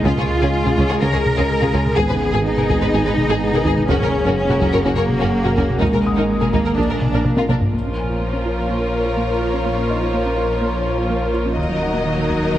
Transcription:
Already playing: G#3 G#4
0.03 C#2 C#3 C#4 F4 G#4 C#5, taiko
0.16 C#2 G#3 G#4 C#5, taiko low-mid
0.40 C#2 C#3 C#4 F4 G#4
0.65 C#2 C#4 F4 G#4, taiko low-mid
0.77 C#2 C#3 C#4 F4 G#4, taiko
0.89 C#2 C#4 G#4 C#5
1.01 C#2 C#3 C#4 F4 G#4 A#4
1.13 C#2 C#4 G#4 C#5
1.26 taiko low-mid
1.36 C#2 C#3 C#4 F4 G#4
1.61 C#2 C#4 F4 G#4, taiko low-mid
1.73 C#2 C#3 C#4 F4 G#4, taiko
1.86 taiko low-mid
1.97 G#1 G#3 B3 G#4 B4, taiko
2.09 G#1 D#4 G#4 B4, taiko low-mid
2.33 G#1 G#3 G#4
2.45 D#4
2.57 G#1 G#4 A#4, taiko low-mid
2.69 G#1 G#3 G#4, taiko
2.81 G#1 G#4 B4
2.93 G#1 G#3 G#4
3.05 G#1 G#4 B4
3.17 taiko low-mid
3.28 G#1 G#3 G#4
3.52 G#1 G#4 A#4, taiko low-mid
3.64 G#1 G#3 G#4, taiko
3.77 taiko low-mid
3.88 F#1 F#3 A#3 C#4 F#4 A#4, taiko
4.00 F#1 C#4 A#4 C#5, taiko low-mid
4.24 F#1 F#3 C#4 F#4 A#4
4.37 C#4
4.49 F#1 F#4 A#4, taiko low-mid
4.60 F#1 F#3 C#4 F#4 A#4, taiko
4.72 F#1 F#4 A#4 C#5
4.84 F#1 F#3 A#3 C#4 F#4 A#4
4.96 F#1 F#4 A#4 C#5
5.09 taiko low-mid
5.19 F#1 F#3 C#4 F#4 A#4
5.43 F#1 F#4 A#4, taiko low-mid
5.56 F#1 F#3 C#4 F#4 A#4, taiko
5.70 taiko low-mid
5.80 G#1 G#3 D#4 G#4 A#4, taiko
5.93 G#1 G#4 A#4, taiko low-mid
6.06 D#6
6.16 G#1 G#3 D#4 A#4
6.40 G#1 G#4 A#4, taiko low-mid
6.52 G#1 G#3 A#3 D#4 A#4, taiko
6.64 G#1 A#4
6.75 A#1 A#3 D4 F4 A#4
6.88 A#1 A#4
7.01 taiko low-mid
7.12 A#1 A#3 D4 A#4
7.25 taiko low-mid
7.37 A#1 F4 A#4, taiko high
7.48 A#1 A#3 D4 A#4, taiko low-mid
7.61 taiko low
7.73 A#1 A#2 F3 A#3 F4 A#4 C#5, taiko
7.86 C#4
7.97 G#5
8.09 F4
8.21 A#3
8.33 C#4
8.45 F4
8.69 A#3
8.81 A#4
9.05 F4
9.17 A#3
9.42 F4
9.54 C#4
9.66 A#3
9.78 C#4
9.90 D#4 D#5
10.02 F4
10.14 A#3
10.25 C#4
10.37 F4
10.61 A#3
10.74 A#4
10.98 F4
11.10 A#3
11.34 F4
11.45 C#4
11.57 D#1 D#3 F#3 A#3 D#4 F#4 A#4 D#5, taiko
11.69 F#3
11.82 F#5
11.93 A#3
12.05 D#3
12.17 F#3
12.30 A#3, taiko
12.54 D#3

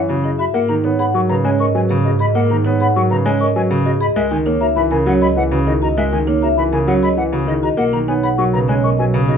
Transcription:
Already playing: F#2 E3 C#5
0.09 C#3 F#4
0.24 E4 G#4 D#5
0.38 F#4 E5 B5
0.54 G#2 A#3 A#4 F#5
0.69 D#3 D#4 A#5
0.84 B3 D#4 C#5
0.99 G#4 F#5 B5
1.14 F#3 A#4 C#6
1.29 C#3 B4 A#5
1.44 G#3 C#4 C#5 G#5
1.59 A#4 D#5 C#6
1.75 F#3 B4 G#5
1.89 C#3 G#4
2.04 F#4 G#4 D#5
2.19 G#4 D#5 B5
2.35 A#3 A#4 F#5
2.50 D#3 D#4 A#5
2.65 B3 D#4 C#5
2.80 G#4 F#5 B5
2.96 F#3 A#4 C#6
3.10 C#3 B4 A#5
3.25 G#3 C#4 C#5 G#5
3.40 A#4 D#5 C#6
3.56 F#3 B4 G#5
3.71 C#3 G#4
3.85 F#4 G#4 D#5
4.00 G#4 D#5 B5
4.16 C#2 G#3 A#4 E5
4.31 D#3 D#4 G#5
4.46 A#3 D#4 C#5
4.61 F#4 E5 A#5
4.76 E3 A#4 B5
4.91 C#3 A#4 G#5
5.06 F#3 C#4 C#5 F#5
5.21 G#4 D#5 B5
5.36 E3 B4 F#5
5.51 C#3 F#4
5.67 D#3 E4 G#4 D#5
5.82 F#4 D#5 A#5
5.97 G#3 A#4 E5
6.12 D#3 D#4 G#5
6.27 A#3 D#4 C#5
6.42 F#4 E5 A#5
6.57 E3 A#4 B5
6.73 C#3 A#4 G#5
6.87 F#3 C#4 C#5 F#5
7.03 G#4 D#5 B5
7.17 E3 B4 F#5
7.32 C#3 F#4
7.47 D#3 E4 G#4 D#5
7.63 F#4 D#5 A#5
7.77 B1 A#3 A#4 F#5
7.93 D#3 D#4 A#5
8.08 B3 D#4 C#5 G#5
8.23 G#4 F#5 B5
8.38 F#3 A#4 C#6
8.53 C#3 B4 A#5
8.68 G#3 C#4 C#5 G#5
8.83 A#4 D#5 C#6
8.98 F#3 B4 G#5
9.14 C#3 G#4
9.28 D#3 F#4 G#4 D#5

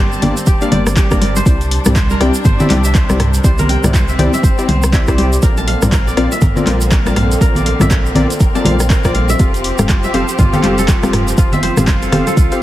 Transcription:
Already playing: G1 G3 C4 G4 A#4 C5 D5 F5 A5
0.12 shaker
0.22 G1 A#3 D4 G4 D5, open hi-hat, low conga
0.37 closed hi-hat, shaker
0.46 D1 G4, kick, closed hi-hat, shaker
0.61 A#3 D4 G4 D5 F5, closed hi-hat, shaker
0.72 G1 A#3 D4 G4 D5, open hi-hat, high conga, low conga
0.87 cross-stick, closed hi-hat, high conga, shaker
0.96 G4, kick, clap, closed hi-hat, shaker
1.11 G1 A#3 D4 G4 A#4 D5, kick, cross-stick, closed hi-hat, shaker
1.21 D5, open hi-hat, high conga
1.36 C5, closed hi-hat, shaker
1.46 C2 C3 C4 D4 E4 G4 C5 D5, kick, closed hi-hat, shaker
1.61 closed hi-hat, shaker
1.71 open hi-hat
1.85 C2 C4 E4 G4 D5, cross-stick, closed hi-hat, mid tom, high conga, shaker
1.95 C5, kick, clap, closed hi-hat, shaker
2.10 A#4, shaker
2.20 C2 C4 E4 G4 D5 G5, cross-stick, open hi-hat
2.34 closed hi-hat, shaker
2.45 G1 C5, kick, closed hi-hat, mid tom, low conga, shaker
2.60 C4 E4 G4 D5 E5, closed hi-hat, low conga, shaker
2.70 C2 C4 E4 G4 D5 G5, clap, open hi-hat, high conga
2.84 E5, closed hi-hat, shaker
2.94 C5, kick, clap, closed hi-hat, high conga, shaker
3.09 C2 C4 E4 G4 D5, cross-stick, closed hi-hat, high conga, shaker
3.20 cross-stick, mid tom, open hi-hat
3.34 closed hi-hat, shaker
3.44 C2 C4 E4 G4 C5 D5, kick, closed hi-hat, shaker
3.58 A#4, closed hi-hat, low conga, shaker
3.69 G5, open hi-hat
3.83 C2 C4 E4 G4 D5, cross-stick, closed hi-hat, mid tom, high conga, low conga, shaker
3.94 C5, kick, clap, closed hi-hat, shaker
4.08 E5, shaker
4.18 C2 C4 E4 G4 D5 G5, open hi-hat, low conga
4.33 E5, closed hi-hat, shaker
4.43 G1 C5, kick, closed hi-hat, shaker
4.58 C4 E4 G4 D5, closed hi-hat, shaker
4.68 C2 C5, open hi-hat, high conga, low conga
4.83 cross-stick, closed hi-hat, high conga, shaker
4.93 C4 E4 G4 D5 E5, kick, clap, closed hi-hat, shaker
5.07 C2 C4 E4 G4 C5 D5, kick, cross-stick, closed hi-hat, shaker
5.18 C4 E4 G4 D5, open hi-hat, high conga
5.33 closed hi-hat, shaker
5.42 A#1 D3 A#3 C4 F4 A#4 D5, kick, closed hi-hat, shaker
5.57 A5, closed hi-hat, shaker
5.68 F5, open hi-hat
5.82 A#1 C4 F4 A#4 D5, cross-stick, closed hi-hat, mid tom, high conga, shaker
5.92 A#4, kick, clap, closed hi-hat, shaker
6.07 D5, shaker
6.17 A#1 C4 F4 A#4 D5 F5, cross-stick, open hi-hat
6.32 E5, closed hi-hat, shaker
6.41 F1 A#4, kick, closed hi-hat, mid tom, low conga, shaker
6.56 C4 F4 A#4 D5, closed hi-hat, low conga, shaker
6.66 A#1 C4 F4 A#4 D5, clap, open hi-hat, high conga
6.81 closed hi-hat, shaker
6.91 A#4, kick, clap, closed hi-hat, high conga, shaker
7.05 A#1 C4 F4 A#4 D5 A5, cross-stick, closed hi-hat, high conga, shaker
7.16 F5, cross-stick, mid tom, open hi-hat
7.32 closed hi-hat, shaker
7.41 A#1 C4 F4 A#4 D5, kick, closed hi-hat, shaker
7.55 D5, closed hi-hat, low conga, shaker
7.66 F5, open hi-hat
7.79 A#1 C4 F4 A#4 D5 E5, cross-stick, closed hi-hat, mid tom, high conga, low conga, shaker
7.91 A#4, kick, clap, closed hi-hat, shaker
8.06 shaker
8.15 A#1 C4 F4 A#4 D5, open hi-hat, low conga
8.30 closed hi-hat, shaker
8.40 F1 A#4, kick, closed hi-hat, shaker
8.55 C4 F4 A#4 D5 A5, closed hi-hat, shaker
8.65 A#1 C4 F4 A#4 D5 F5, open hi-hat, high conga, low conga
8.80 cross-stick, closed hi-hat, high conga, shaker
8.90 A#4, kick, clap, closed hi-hat, shaker
9.04 A#1 C4 F4 A#4 D5, kick, cross-stick, closed hi-hat, shaker
9.15 F5, open hi-hat, high conga
9.29 E5, closed hi-hat, shaker
9.39 F1 F3 C4 F4 G4 A4 F5, kick, closed hi-hat, shaker
9.54 closed hi-hat, shaker
9.64 open hi-hat
9.78 F1 C4 G4 A4 F5, cross-stick, closed hi-hat, mid tom, high conga, shaker
9.89 F4, kick, clap, closed hi-hat, shaker
10.03 E5, shaker
10.13 F1 C4 G4 A4 C5 F5, open hi-hat
10.29 closed hi-hat, shaker
10.39 C2 F4, kick, closed hi-hat, mid tom, low conga, shaker
10.53 C4 G4 A4 F5, closed hi-hat, low conga, shaker
10.63 F1 C4 G4 A4 C5 F5, clap, open hi-hat, high conga
10.78 A4, closed hi-hat, shaker
10.88 F4, kick, clap, closed hi-hat, high conga, shaker
11.03 F1 C4 G4 A4 F5, cross-stick, closed hi-hat, high conga, shaker
11.13 cross-stick, mid tom, open hi-hat
11.28 closed hi-hat, shaker
11.38 F1 C4 F4 G4 A4 F5, kick, closed hi-hat, shaker
11.52 E5, closed hi-hat, low conga, shaker
11.63 C5, open hi-hat
11.77 F1 C4 G4 A4 F5, cross-stick, closed hi-hat, mid tom, high conga, low conga, shaker
11.87 F4, kick, clap, closed hi-hat, shaker
12.02 A4, closed hi-hat, shaker
12.12 F1 C4 G4 A4 C5 F5, cross-stick, open hi-hat, low conga
12.27 A4, closed hi-hat, shaker
12.37 C2 F4, kick, closed hi-hat, shaker
12.52 C4 G4 A4 F5, closed hi-hat, shaker

